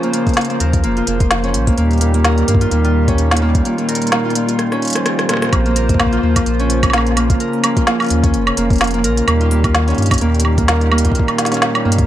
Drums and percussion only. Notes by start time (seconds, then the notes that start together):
0.03 closed hi-hat
0.13 closed hi-hat
0.27 kick, closed hi-hat
0.29 closed hi-hat
0.34 snare, closed hi-hat
0.37 closed hi-hat
0.41 closed hi-hat
0.45 closed hi-hat
0.50 closed hi-hat
0.60 closed hi-hat
0.73 kick, closed hi-hat
0.84 closed hi-hat
0.97 closed hi-hat
1.07 closed hi-hat
1.20 kick, closed hi-hat
1.31 snare, closed hi-hat
1.44 closed hi-hat
1.54 closed hi-hat
1.67 kick, closed hi-hat
1.78 closed hi-hat
1.91 closed hi-hat
1.93 closed hi-hat
1.98 closed hi-hat
2.01 closed hi-hat
2.14 closed hi-hat
2.25 snare, closed hi-hat
2.38 closed hi-hat
2.48 closed hi-hat
2.55 kick
2.61 closed hi-hat
2.71 closed hi-hat
2.85 closed hi-hat
3.08 kick, closed hi-hat
3.18 closed hi-hat
3.31 snare, closed hi-hat
3.37 closed hi-hat
3.55 kick, closed hi-hat
3.65 closed hi-hat
3.78 closed hi-hat
3.89 closed hi-hat
3.95 closed hi-hat
4.02 closed hi-hat
4.07 closed hi-hat
4.12 snare, closed hi-hat
4.30 closed hi-hat
4.35 closed hi-hat
4.49 closed hi-hat
4.59 cross-stick, closed hi-hat
4.72 cross-stick, closed hi-hat
4.82 closed hi-hat
4.85 closed hi-hat
4.88 closed hi-hat
4.90 closed hi-hat
4.93 cross-stick, closed hi-hat
4.95 closed hi-hat
5.06 cross-stick, closed hi-hat
5.19 cross-stick, closed hi-hat
5.29 cross-stick, closed hi-hat
5.33 cross-stick
5.37 cross-stick
5.42 cross-stick, closed hi-hat
5.45 cross-stick
5.49 kick, cross-stick, closed hi-hat, high woodblock
5.66 closed hi-hat
5.76 closed hi-hat
5.89 kick, closed hi-hat
5.94 kick
6.00 kick, snare, closed hi-hat, high woodblock
6.06 kick
6.13 closed hi-hat
6.36 kick, closed hi-hat, high woodblock
6.46 closed hi-hat
6.60 closed hi-hat
6.70 closed hi-hat
6.83 kick, closed hi-hat, high woodblock
6.90 snare, closed hi-hat, high woodblock
6.98 high woodblock
7.07 closed hi-hat
7.17 closed hi-hat, high woodblock
7.30 kick, closed hi-hat
7.40 closed hi-hat
7.53 closed hi-hat
7.64 closed hi-hat, high woodblock
7.77 kick, closed hi-hat
7.87 snare, closed hi-hat
8.00 closed hi-hat, high woodblock
8.02 closed hi-hat
8.04 closed hi-hat
8.06 closed hi-hat
8.08 closed hi-hat
8.10 closed hi-hat
8.24 kick, closed hi-hat
8.34 closed hi-hat
8.47 closed hi-hat, high woodblock
8.57 closed hi-hat
8.70 kick, closed hi-hat
8.73 closed hi-hat
8.76 closed hi-hat
8.78 snare, closed hi-hat
8.81 closed hi-hat, high woodblock
8.84 closed hi-hat
8.87 closed hi-hat
8.91 closed hi-hat
8.94 closed hi-hat
9.04 closed hi-hat
9.17 closed hi-hat
9.28 closed hi-hat, high woodblock
9.41 closed hi-hat
9.51 closed hi-hat
9.64 kick, closed hi-hat, high woodblock
9.75 snare, closed hi-hat
9.88 closed hi-hat
9.90 closed hi-hat
9.95 closed hi-hat
9.98 closed hi-hat
10.02 closed hi-hat
10.06 closed hi-hat
10.11 kick, closed hi-hat, high woodblock
10.14 closed hi-hat
10.18 closed hi-hat
10.21 closed hi-hat
10.34 closed hi-hat
10.40 closed hi-hat
10.45 high woodblock
10.58 kick, closed hi-hat
10.68 snare, closed hi-hat
10.81 closed hi-hat
10.92 high woodblock
10.98 closed hi-hat
11.05 kick, closed hi-hat
11.12 kick, closed hi-hat
11.19 kick
11.28 closed hi-hat, high woodblock
11.38 snare, closed hi-hat
11.45 snare, closed hi-hat
11.52 snare, closed hi-hat
11.54 snare, closed hi-hat
11.62 snare, closed hi-hat
11.75 closed hi-hat, high woodblock
11.92 closed hi-hat
11.98 kick, closed hi-hat